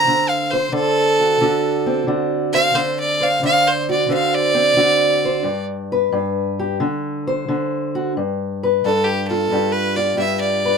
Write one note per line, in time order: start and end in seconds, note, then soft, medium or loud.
0.00 0.88 A3 medium
0.00 1.85 C4 medium
0.00 0.10 C5 medium
0.00 0.31 A#5 loud
0.07 0.72 D3 medium
0.29 0.52 F5 medium
0.51 0.75 C5 medium
0.51 2.53 C5 medium
0.72 1.40 D3 medium
0.72 2.04 A4 loud
1.20 1.41 F#4 medium
1.41 2.06 D3 medium
1.41 2.07 F#4 medium
1.86 4.53 C4 medium
2.07 2.73 D3 medium
2.07 2.73 F#4 medium
2.53 2.73 C5 medium
2.53 2.77 F5 loud
2.74 3.41 D3 medium
2.74 2.97 C5 medium
3.00 3.25 D5 medium
3.21 4.09 C5 medium
3.21 3.43 F5 medium
3.43 4.08 D3 medium
3.43 3.69 F5 loud
3.67 3.88 C5 medium
3.89 4.76 F#4 medium
3.89 4.11 D5 medium
4.09 4.75 D3 medium
4.09 5.23 C5 medium
4.14 4.36 F5 medium
4.35 5.64 D5 loud
4.54 5.44 C4 medium
4.76 5.44 D3 medium
4.76 5.42 F#4 medium
5.25 5.43 C5 medium
5.43 6.11 G2 medium
5.92 6.78 B4 medium
6.12 6.79 G2 medium
6.59 6.77 G4 medium
6.80 7.47 D3 medium
7.27 8.13 C5 medium
7.48 8.15 D3 medium
7.95 8.13 F#4 medium
8.17 8.83 G2 medium
8.63 10.64 B4 medium
8.85 9.50 G2 medium
8.85 9.06 A4 medium
9.05 9.26 G4 medium
9.28 9.96 F4 medium
9.28 9.74 A4 medium
9.51 10.16 G2 medium
9.51 10.17 G4 medium
9.72 9.98 B4 medium
9.96 10.78 F4 medium
9.96 10.17 D5 medium
10.17 10.78 G2 medium
10.17 10.78 G4 medium
10.17 10.40 E5 medium
10.40 10.78 D5 medium
10.65 10.78 B4 medium